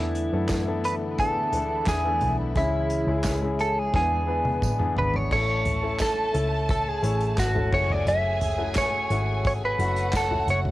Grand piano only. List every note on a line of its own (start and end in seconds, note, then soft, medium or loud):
0.00 0.80 E3 medium
0.00 0.23 B3 medium
0.00 0.23 D4 medium
0.00 0.23 E4 medium
0.00 0.23 A4 medium
0.33 0.60 B3 medium
0.33 0.61 D4 medium
0.33 0.61 E4 medium
0.33 0.61 A4 medium
0.67 1.08 B3 medium
0.67 1.09 D4 medium
0.67 1.09 E4 medium
0.67 1.09 A4 medium
1.19 1.46 B3 medium
1.19 1.46 D4 medium
1.19 1.47 E4 medium
1.19 1.47 G#4 medium
1.54 1.95 B3 medium
1.54 1.95 D4 medium
1.54 1.95 E4 medium
1.54 1.95 A4 medium
2.05 2.46 A3 medium
2.05 2.46 B3 medium
2.05 2.46 D4 medium
2.05 2.46 E4 medium
2.56 3.56 C#3 medium
2.56 2.97 G#3 medium
2.56 2.98 C#4 medium
2.56 2.98 E4 medium
2.56 2.98 G#4 medium
3.08 3.35 G#3 medium
3.08 3.36 C#4 medium
3.08 3.36 E4 medium
3.08 3.36 G#4 medium
3.42 3.84 G#3 medium
3.42 3.84 C#4 medium
3.42 3.84 E4 medium
3.42 3.84 G#4 medium
3.94 4.93 E3 medium
3.94 4.22 B3 medium
3.94 4.22 D4 medium
3.94 4.22 E4 medium
3.94 4.22 G#4 medium
4.27 4.69 B3 medium
4.27 4.69 D4 medium
4.27 4.70 E4 medium
4.27 4.70 B4 medium
4.79 5.21 B3 medium
4.79 5.21 D4 medium
4.79 5.21 E4 medium
4.79 5.21 G#4 medium
5.31 6.31 A2 medium
5.31 5.73 A3 medium
5.31 5.73 C#4 medium
5.31 5.73 E4 medium
5.31 5.73 A4 medium
5.83 6.24 A3 medium
5.83 6.25 C#4 medium
5.83 6.25 E4 medium
5.83 6.25 A4 medium
6.33 6.89 A3 medium
6.33 6.90 C#4 medium
6.33 6.90 E4 medium
6.33 6.90 A4 medium
7.02 7.45 A3 medium
7.02 7.45 C#4 medium
7.02 7.45 E4 medium
7.02 7.45 C#5 medium
7.54 7.70 A3 medium
7.54 7.71 C#4 medium
7.54 7.71 E4 medium
7.54 7.73 A4 medium
7.72 8.41 A3 medium
7.72 8.42 C#4 medium
7.72 8.42 E4 medium
7.72 8.42 F#4 medium
8.58 9.00 A3 medium
8.58 9.00 C#4 medium
8.58 9.00 E4 medium
8.58 9.00 F#4 medium
9.10 9.66 A3 medium
9.10 9.66 C#4 medium
9.10 9.66 E4 medium
9.10 9.66 F#4 medium
9.78 10.20 A3 medium
9.78 10.21 C#4 medium
9.78 10.21 E4 medium
9.78 10.21 F#4 medium
10.31 10.71 A3 medium
10.31 10.71 C#4 medium
10.31 10.71 E4 medium
10.31 10.71 F#4 medium